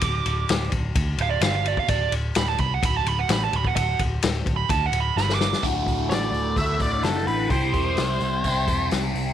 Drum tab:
RD |x-x-x-x-x-x-x-x-|x-x-x-x-x-x-x-x-|x-x-x-x-x-x-----|----------------|
HH |----------------|----------------|----------------|o-o-o-o-o-o-o-o-|
SD |----o-------o---|----o-------o---|----o-------oooo|----o-------oo--|
BD |o-----o-o------o|o-----o-o------o|o-o---o-o-------|o-o-----o-o-----|

RD |----------------|
HH |o-o-o-o-o-o-o-o-|
SD |----o-------o---|
BD |o-o-----o-o-----|